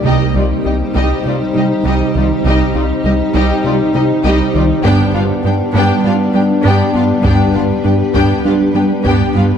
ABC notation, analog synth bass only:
X:1
M:4/4
L:1/8
Q:1/4=100
K:Cm
V:1 name="Analog synth bass" clef=bass
C,, C,, C,, C,, C, C, C,, C,, | C,, C,, C,, C,, C, C, C,, C,, | G,, G,, G,, G,, G, G, G,, G,, | G,, G,, G,, G,, G, G, G,, G,, |]